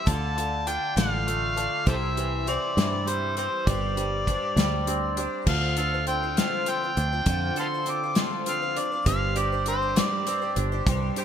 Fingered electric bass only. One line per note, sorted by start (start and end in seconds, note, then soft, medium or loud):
0.07 0.77 D2 medium
0.97 1.67 A1 medium
1.87 2.57 C2 loud
2.77 3.47 G2 medium
3.67 4.37 G1 loud
4.56 5.26 D2 medium
5.46 6.40 D2 loud
6.97 7.20 D2 medium
7.26 7.50 F2 medium
9.06 10.00 G1 loud
10.57 10.80 G1 medium
10.86 11.10 C2 medium